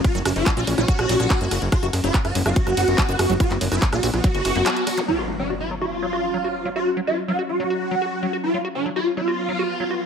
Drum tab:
RD |x-x-x-x-x-x-x-x-|x-x-x-x-x-x-x-x-|x-x-x-x-x-x-x-x-|----------------|
HH |xxoxxxoxxxoxxxox|xxoxxxoxxxoxxxox|xxoxxxoxxxoxxxox|----------------|
CP |----x-------x---|----x-------x---|-x--x-------x---|----------------|
SD |r-r-r--r-r-r--r-|r-r--r-r-r--r-r-|r--r-r-r--r-r-r-|----------------|
BD |o---o---o---o---|o---o---o---o---|o---o---o-------|----------------|

RD |----------------|----------------|
HH |----------------|----------------|
CP |----------------|----------------|
SD |----------------|----------------|
BD |----------------|----------------|